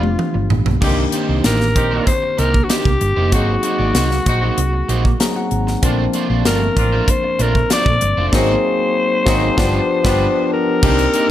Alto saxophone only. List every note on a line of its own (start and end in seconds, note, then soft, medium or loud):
0.00 0.51 F4 medium
1.45 2.04 A#4 loud
2.07 2.41 C5 medium
2.39 2.65 A#4 medium
2.64 2.71 F#4 medium
2.69 3.34 G4 medium
3.32 5.51 F#4 medium
6.46 7.12 A#4 medium
7.10 7.43 C5 medium
7.42 7.72 A#4 medium
7.73 8.28 D5 loud
8.28 8.37 D5 medium
8.35 10.52 C5 loud
10.53 11.31 A#4 loud